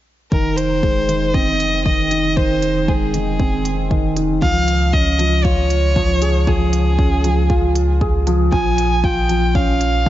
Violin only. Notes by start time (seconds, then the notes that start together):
0.32 A#4
0.57 C5
1.34 D#5
1.85 D#5
2.36 C5
2.88 G#4
4.42 F5
4.93 D#5
5.44 C#5
6.47 G#4
8.53 G#5
9.04 G5
9.55 F5